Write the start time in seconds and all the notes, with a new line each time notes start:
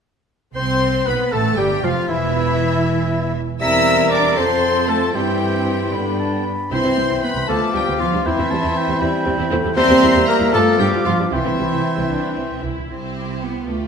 0.55 C2 C4 C5 C6
1.05 B1 B3 B4 B5
1.32 A1 A3 A4 A5
1.57 G1 G3 G4 G5
1.83 F1 F3 F4 F5
2.09 E1 E3 E4 E5
3.61 E2 G3 C4 E4 A#4 E5 A#5 E6
4.12 D4 D5 D6
4.37 F2 F3 C4 A4 C5 A5 C6
4.88 A3 A4 A5
5.14 G2 E3 G3 C4 E4 G4 G5 C6
5.93 G2 D3 B3 D4 B5
6.20 A5
6.46 B5
6.71 C2 E3 C4 E4 C5 G5 C6
6.84 C2 C4 E4
6.97 C2 G3 C4
7.10 C2 C4 E4
7.23 B3 B4 B5
7.36 C2 G3 C4
7.48 D2 F3 A3 B3 F4 A4 F5 A5 D6
7.74 D2 G3 D4 G4 G5
7.87 D2 B3 F4
7.99 D2 F3 B3 F4 F5
8.13 D2 G3 D4
8.24 E2 E3 C4 E4 E5 G5 C6
8.38 E2 C4 E4
8.51 E2 G3 C4 A5
8.63 E2 C4 E4
8.77 G5
8.89 E2 G3 C4
9.00 E2 G3 C4 E4 G5 B5
9.26 E2 G3 C4
9.38 E2 C4 E4
9.51 E2 A3 C4 E4
9.64 E2 G3 C4
9.75 E2 G3 A#3 C4 G4 C5 E5 A#5 C6
9.88 E2 A#3 G4
10.02 E2 G3 E4
10.15 E2 A#3 G4
10.27 A#3 A#4 A#5
10.40 E2 G3 E4
10.53 G2 F3 A3 B3 F4 A4 F5 A5 D6
10.79 G2 G3 D4 G4 G5
10.93 G2 B3 F4
11.05 G2 F3 B3 F4 F5
11.19 G2 G3 D4
11.32 C2 E3 C4 E4 E5 G5 C6
11.45 C2 C4 E4
11.58 C2 G3 C4
11.71 C2 C4 E4
11.97 C2 G3 C4
12.10 C2 D4
12.37 C2 C4
12.51 C2
12.63 C2 E4
12.78 C2
12.89 C2 C4 E4 G4 C5
13.42 B3
13.67 D2 A3 F4 G4 B4